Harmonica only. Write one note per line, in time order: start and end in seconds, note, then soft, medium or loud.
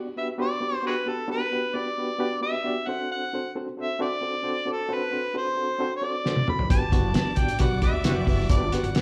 0.18 0.28 E5 medium
0.41 0.83 D5 loud
0.87 0.95 F#4 medium
0.87 0.94 G#4 medium
0.87 1.10 B4 loud
1.08 1.30 A4 medium
1.31 1.77 B4 loud
1.75 2.42 D5 loud
2.42 2.89 E5 loud
2.88 3.10 F#5 loud
3.12 3.53 F#5 loud
3.82 4.01 E5 loud
4.02 4.73 D5 loud
4.72 4.96 A4 loud
4.94 5.37 B4 loud
5.38 5.93 C5 loud
5.96 6.05 C#5 medium
6.04 6.48 D5 loud
6.49 6.69 B5 loud
6.71 7.12 A5 loud
7.16 7.40 A5 loud
7.38 7.59 G5 loud
7.60 7.81 F#5 loud
7.83 8.25 E5 loud
8.29 8.49 E5 loud
8.51 8.76 D5 loud
8.74 9.02 F#5 loud